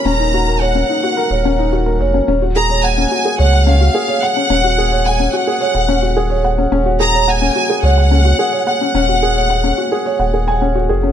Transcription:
<<
  \new Staff \with { instrumentName = "Violin section" } { \time 4/4 \key des \mixolydian \tempo 4 = 108 bes''4 ges''2 r4 | r8 bes''8 aes''4 ges''8 f''4 ges''8~ | ges''4 aes''8 ges''2 r8 | r8 bes''8 aes''4 ges''4. ges''8~ |
ges''2. r4 | }
  \new Staff \with { instrumentName = "Felt piano" } { \time 4/4 \key des \mixolydian des'16 ees'16 ges'16 bes'16 des''16 des'16 ees'16 ges'16 bes'16 des''16 des'16 ees'16 ges'16 bes'16 des''16 des'16 | des'16 ges'16 aes'16 des''16 ges''16 des'16 ges'16 aes'16 des''16 ges''16 des'16 ges'16 aes'16 des''16 ges''16 des'16 | des'16 ges'16 aes'16 des''16 ges''16 des'16 ges'16 aes'16 des''16 ges''16 des'16 ges'16 aes'16 des''16 ges''16 des'16 | des'16 ges'16 aes'16 des''16 ges''16 des'16 ges'16 aes'16 des''16 ges''16 des'16 ges'16 aes'16 des''16 ges''16 des'16 |
des'16 ges'16 aes'16 des''16 ges''16 des'16 ges'16 aes'16 des''16 ges''16 aes'16 aes''16 des'16 ges'16 aes'16 des'16 | }
  \new Staff \with { instrumentName = "Sub bass" } { \clef bass \time 4/4 \key des \mixolydian ees,,4. r8. ees,,4~ ees,,16 f,,8 | ees,,4. r8 des,4 r4 | ees,,4. r8. ees,,4.~ ees,,16 | ees,,4. r8 des,4 r4 |
ees,,4. r8. ees,,4~ ees,,16 f,,8 | }
>>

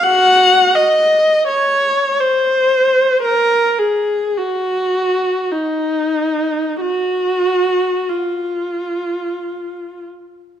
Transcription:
\new Staff \with { instrumentName = "Viola" } { \time 3/4 \key ges \lydian \tempo 4 = 52 << { \tuplet 3/2 { ges''4 ees''8~ ees''8 des''4 } c''4 | bes'8 aes'8 ges'4 ees'4 | ges'4 f'4. r8 | } \\ { ges'8 r2 r8 | r2. | r2. | } >> }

